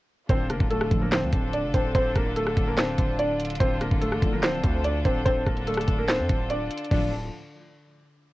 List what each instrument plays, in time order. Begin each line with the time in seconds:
0.29 808-style bass D1, string section D3 D4 F4 A4, felt piano C4 C5, kick, closed hi-hat
0.50 808-style bass F1, felt piano A#3 A#4, cross-stick, closed hi-hat
0.60 808-style bass D1, kick
0.71 felt piano A3 A4, closed hi-hat
0.81 cross-stick
0.91 808-style bass D1, analog polysynth A2 D3 F3, kick, closed hi-hat
1.02 felt piano A#3 A#4
1.12 felt piano C4 C5, snare, clap, closed hi-hat
1.23 808-style bass D2
1.33 808-style bass D1, kick, closed hi-hat
1.53 felt piano D4 D5, closed hi-hat
1.64 808-style bass F1
1.74 808-style bass D1, felt piano C4 C5, kick, closed hi-hat
1.95 808-style bass D1, felt piano C4 C5, kick, closed hi-hat
2.15 808-style bass D1, felt piano A#3 A#4, kick, cross-stick, closed hi-hat
2.36 felt piano A3 A4, closed hi-hat
2.47 cross-stick
2.57 808-style bass D1, kick, closed hi-hat
2.67 felt piano A#3 A#4
2.77 felt piano C4 C5, snare, clap, closed hi-hat
2.98 808-style bass D1, kick, closed hi-hat
3.19 felt piano D4 D5, closed hi-hat
3.40 closed hi-hat
3.45 closed hi-hat
3.50 closed hi-hat
3.55 closed hi-hat
3.60 808-style bass D1, felt piano C4 C5, string section D4 A4, kick, closed hi-hat
3.81 felt piano A#3 A#4, cross-stick, closed hi-hat
3.91 808-style bass D1, kick
4.01 felt piano A3 A4, closed hi-hat
4.12 808-style bass C1, cross-stick
4.22 808-style bass D1, analog polysynth A2 D3 F3, kick, closed hi-hat
4.33 felt piano A#3 A#4
4.43 felt piano C4 C5, snare, clap, closed hi-hat
4.64 808-style bass D2, kick, closed hi-hat
4.84 felt piano D4 D5, closed hi-hat
5.05 808-style bass D1, felt piano C4 C5, kick, closed hi-hat
5.25 808-style bass D1, felt piano C4 C5, kick, closed hi-hat
5.46 808-style bass D1, felt piano A#3 A#4, kick, cross-stick, closed hi-hat
5.57 closed hi-hat
5.67 felt piano A3 A4, closed hi-hat
5.74 cross-stick, closed hi-hat
5.81 closed hi-hat
5.88 808-style bass D1, kick, closed hi-hat
5.98 felt piano A#3 A#4
6.08 felt piano C4 C5, snare, clap, closed hi-hat
6.19 808-style bass F2
6.29 808-style bass D1, kick, closed hi-hat
6.50 felt piano D4 D5, closed hi-hat
6.71 closed hi-hat
6.77 closed hi-hat
6.84 closed hi-hat
6.91 808-style bass D1, analog polysynth D2 A2 F3, string section D3 D4 F4 A4, felt piano D4, kick, crash